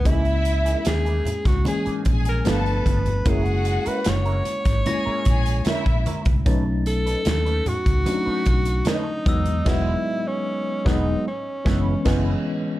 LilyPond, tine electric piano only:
\new Staff \with { instrumentName = "Tine electric piano" } { \time 4/4 \key fis \mixolydian \tempo 4 = 75 <gis ais cis' e'>2 <e gis ais cis'>4 <f a b d'>4 | <gis ais cis' e'>2 <gis ais cis' e'>2 | <fis a cis' dis'>2 <fis a cis' d' dis'>4. <fis gis b dis'>8 | <fis gis b dis''>8 r4 <fis gis b dis'>8 r8 <e gis b cis'>8 <e gis b cis'>8 r8 | }